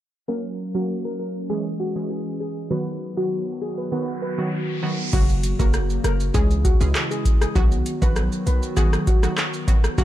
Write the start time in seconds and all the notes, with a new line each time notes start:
0.28 F#3 A#3 C#4 A#4
0.74 F#3 A#3 C#4 F#4 A#4
1.05 A#4
1.19 A#4
1.49 E3 G#3 C#4 G#4
1.80 F#4
1.96 E3 G#3 C#4 G#4
2.10 G#4
2.40 G#4
2.70 D#3 F#3 B3 F#4 B4, riser
3.17 D#3 F#3 B3 F#4
3.62 G#4
3.78 B4
3.92 D#3 F#3 B3 F#4 B4
4.22 B4
4.38 D#3 F#3 B3 F#4
4.83 D#3 F#3 B3 F#4
5.13 F#1 C#3 F#3 A#3 F#4, kick, crash, shaker
5.29 shaker
5.43 closed hi-hat, shaker
5.59 F#1 C#3 F#3 A#3 F#4 A#4, kick, shaker
5.74 cross-stick, shaker
5.90 shaker
6.04 F#1 A#4, cross-stick, closed hi-hat, shaker
6.20 shaker
6.34 C#2 E3 G#3 C#4 E4 G#4, kick, shaker
6.51 shaker
6.65 F#4, kick, closed hi-hat, shaker
6.81 C#2 E3 G#3 C#4 G#4, shaker
6.95 cross-stick, clap, shaker
7.11 G#4, shaker
7.25 kick, closed hi-hat, shaker
7.41 G#4, cross-stick, shaker
7.55 B1 D#3 F#3 B3 F#4, kick, shaker
7.72 shaker
7.86 closed hi-hat, shaker
8.02 A#1 D#3 F#3 B3 F#4 B4, kick, shaker
8.16 cross-stick, shaker
8.32 shaker
8.47 B1 B4, closed hi-hat, shaker
8.63 shaker
8.77 D#3 F#3 B3 F#4 G#4, kick, shaker
8.93 cross-stick, shaker
9.07 F#4, kick, closed hi-hat, shaker
9.23 D#3 F#3 B3 F#4, cross-stick, shaker
9.38 cross-stick, clap, shaker
9.54 shaker
9.68 D#3 F#3 B3 F#4, kick, closed hi-hat, shaker
9.84 cross-stick, shaker
9.98 F#1 C#3 F#3 A#3 F#4, kick, shaker